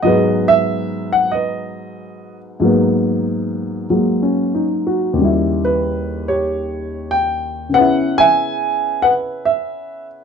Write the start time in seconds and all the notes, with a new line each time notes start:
0.03 G#2 F#3 G#3 B4 D#5
0.08 B3
0.48 E5
1.13 F#5
1.32 B4 D#5
2.60 G#2 F#3 A#3
2.65 B3
3.90 F#3 G#3 A#3
4.22 C#4
4.55 D#4
4.87 F#4
5.13 D#2
5.17 C#3 G3
5.24 E4
5.65 B4
6.28 G4 C#5
7.11 G5
7.69 C#3 B3
7.74 C#4 B4 F#5
7.80 E4
8.18 E5 G#5
9.02 B4 F#5
9.45 E5